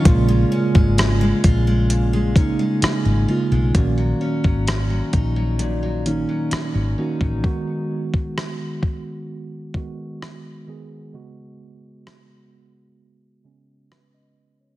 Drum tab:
HH |x---x-x-x-x-x---|x---x-x-x-x-x---|----------------|----------------|
SD |----r-------r---|----r-------r---|----r-------r---|----r-------r---|
BD |o--o--o---o-----|o--o--o--------o|o--o--o---o-----|----------------|